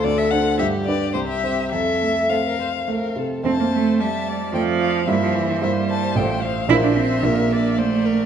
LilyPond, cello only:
\new Staff \with { instrumentName = "Cello" } { \time 3/4 \key f \major \tempo 4 = 110 d4 f4 g4 | r4 a4 a4 | c'16 bes16 a8 g4 f4 | g16 f16 e8 g4. r8 |
e'16 d'16 c'8 bes4 a4 | }